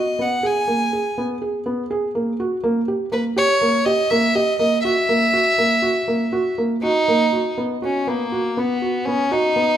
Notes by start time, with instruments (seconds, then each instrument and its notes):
Already playing: felt piano F#4, violin D#5
0.19 felt piano B3, violin F#5
0.43 felt piano G#4, violin G#5
0.68 felt piano A#3
0.93 felt piano G#4
1.18 felt piano B3
1.42 felt piano G#4
1.66 felt piano B3
1.91 felt piano G#4
2.15 felt piano A#3
2.40 felt piano F#4
2.64 felt piano A#3
2.88 felt piano G4
3.12 felt piano A#3, violin B4
3.36 felt piano G4, violin C#5
3.61 felt piano A#3
3.86 felt piano G4, violin D#5
4.10 felt piano A#3, violin E5
4.35 felt piano G4, violin D#5
4.59 felt piano A#3, violin D#5
4.84 felt piano F#4, violin E5
5.09 felt piano A#3
5.33 felt piano F#4
5.58 felt piano A#3
5.82 felt piano F#4
6.08 felt piano A#3
6.33 felt piano F#4
6.58 felt piano A#3
6.83 violin D#4, felt piano F#4
7.08 felt piano A#3
7.33 felt piano F#4
7.58 felt piano B3
7.82 violin C#4, felt piano F#4
8.07 violin A#3, felt piano B3
8.32 felt piano F#4
8.57 felt piano B3, violin B3
8.82 felt piano F#4
9.06 felt piano B3, violin C#4
9.31 violin D#4, felt piano F#4
9.56 felt piano B3